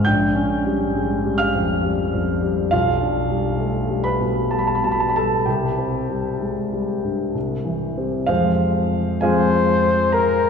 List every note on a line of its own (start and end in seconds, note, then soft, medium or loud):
0.00 0.10 G#2 soft
0.00 0.10 G#3 soft
0.05 2.68 A#1 soft
0.05 1.36 G5 medium
0.05 1.39 G6 medium
0.35 0.83 C#4 soft
0.65 1.13 G3 soft
0.94 1.25 G#3 soft
1.24 1.72 G3 soft
1.38 2.24 F5 medium
1.38 2.28 F6 medium
1.55 2.02 F2 soft
1.83 2.31 G3 soft
2.13 2.61 F2 soft
2.43 2.72 G3 soft
2.71 5.43 B1 soft
2.71 4.01 F4 soft
2.71 4.04 F5 medium
3.01 3.48 D4 soft
3.30 3.78 G3 soft
3.59 3.90 A3 soft
3.89 4.39 G3 soft
4.04 4.48 B4 soft
4.04 4.51 B5 medium
4.20 4.70 B2 soft
4.51 5.02 G3 soft
4.51 4.59 A5 medium
4.59 4.68 B5 medium
4.67 4.76 A5 medium
4.75 4.84 B5 medium
4.82 5.33 B2 soft
4.82 4.93 A5 medium
4.91 5.01 B5 soft
5.00 5.09 A5 medium
5.09 5.18 B5 medium
5.15 5.47 G3 soft
5.15 5.44 A4 medium
5.15 5.46 A5 medium
5.46 7.31 C2 soft
5.46 7.78 G4 soft
5.46 7.81 G5 medium
5.78 6.28 C4 soft
6.10 6.60 G3 soft
6.40 6.72 G#3 soft
6.72 7.22 G3 soft
7.03 7.35 G2 soft
7.34 8.26 C2 soft
7.65 8.16 E3 soft
7.97 8.26 G3 soft
7.97 8.26 C4 soft
8.27 9.19 F2 soft
8.27 9.19 F3 soft
8.27 9.19 G#3 soft
8.27 9.19 C4 soft
8.27 9.18 F4 soft
8.27 9.18 C5 soft
8.27 9.20 F5 medium
9.21 10.50 F2 soft
9.21 10.50 F3 soft
9.21 10.50 G#3 soft
9.21 10.50 C4 soft
9.21 10.10 G#4 medium
9.21 10.16 C5 medium
9.21 10.10 F5 soft
9.21 10.13 G#5 medium
10.12 10.50 A#4 soft
10.12 10.50 A#4 medium
10.12 10.50 A#5 medium